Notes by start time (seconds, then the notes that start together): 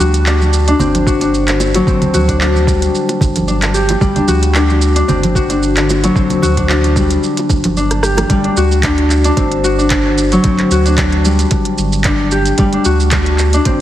Already playing: G3 C4 D4
0.00 D2 F#4, shaker
0.14 closed hi-hat, shaker
0.26 D4, clap, shaker
0.41 high conga, shaker
0.53 shaker
0.68 D4, closed hi-hat, shaker
0.79 G1 C4, low conga, shaker
0.95 closed hi-hat, high conga, shaker
1.07 F#4, kick, shaker
1.21 D4, closed hi-hat, high bongo, shaker
1.34 shaker
1.48 D3, clap, closed hi-hat, shaker
1.60 high bongo, shaker
1.75 F#3, closed hi-hat, high bongo, shaker
1.87 G1 C4, kick, shaker
2.02 closed hi-hat, low conga, shaker
2.14 D2 F#4, high conga, shaker
2.28 D4, kick, closed hi-hat, shaker
2.41 D4, clap, shaker
2.56 high conga, shaker
2.67 G3, kick, shaker
2.82 closed hi-hat, shaker
2.95 shaker
3.09 closed hi-hat, high bongo, shaker
3.21 G1, kick, low conga, shaker
3.36 closed hi-hat, high conga, shaker
3.48 D4, shaker
3.62 clap, closed hi-hat, shaker
3.74 G4, shaker
3.89 closed hi-hat, high bongo, high conga, shaker
4.01 G1 G3, kick, shaker
4.16 D4, closed hi-hat, low conga, shaker
4.28 D2 F#4, high conga, shaker
4.43 closed hi-hat, shaker
4.55 D4, clap, shaker
4.70 high conga, shaker
4.82 shaker
4.96 D4, closed hi-hat, shaker
5.08 G1 C4, low conga, shaker
5.23 closed hi-hat, high conga, shaker
5.35 F#4, kick, shaker
5.50 D4, closed hi-hat, high bongo, shaker
5.63 shaker
5.77 D3, clap, closed hi-hat, shaker
5.90 high bongo, shaker
6.04 F#3, closed hi-hat, high bongo, shaker
6.15 G1 C4, kick, shaker
6.30 closed hi-hat, low conga, shaker
6.42 D2 F#4, high conga, shaker
6.57 D4, kick, closed hi-hat, shaker
6.69 D4, clap, shaker
6.84 closed hi-hat, high bongo, high conga, shaker
6.96 G3, kick, shaker
7.11 closed hi-hat, shaker
7.23 shaker
7.37 closed hi-hat, high bongo, shaker
7.50 G1, kick, low conga, shaker
7.64 closed hi-hat, high conga, shaker
7.77 D4, shaker
7.91 cross-stick, closed hi-hat, high bongo, shaker
8.03 G4, cross-stick, shaker
8.17 cross-stick, closed hi-hat, high bongo, high conga, shaker
8.30 G1 G3, kick, closed hi-hat, shaker
8.44 D4, closed hi-hat
8.57 D2 F#4, shaker
8.72 shaker
8.83 D4, kick, clap, closed hi-hat, shaker
8.98 closed hi-hat
9.10 clap, shaker
9.24 D4, closed hi-hat, shaker
9.37 G1 C4, kick, closed hi-hat, shaker
9.52 closed hi-hat
9.64 F#4, shaker
9.78 D4, shaker
9.90 kick, clap, closed hi-hat, shaker
10.05 D3
10.18 shaker
10.32 F#3, closed hi-hat, shaker
10.44 G1 C4, kick, closed hi-hat, shaker
10.59 clap, closed hi-hat
10.71 D2 F#4, shaker
10.86 D4, closed hi-hat, shaker
10.98 D4, kick, clap, closed hi-hat, shaker
11.12 closed hi-hat
11.25 G3, shaker
11.39 closed hi-hat, shaker
11.51 kick, closed hi-hat, shaker
11.65 closed hi-hat
11.78 G1, shaker
11.93 shaker
12.04 D4, kick, clap, closed hi-hat, shaker
12.31 G4, shaker
12.46 closed hi-hat, shaker
12.58 G1 G3, kick, closed hi-hat, shaker
12.73 D4, closed hi-hat
12.85 D2 F#4, shaker
13.00 shaker
13.11 D4, kick, clap, closed hi-hat, shaker
13.26 closed hi-hat
13.38 clap, shaker
13.53 D4, closed hi-hat, shaker
13.65 G1 C4, kick, closed hi-hat, shaker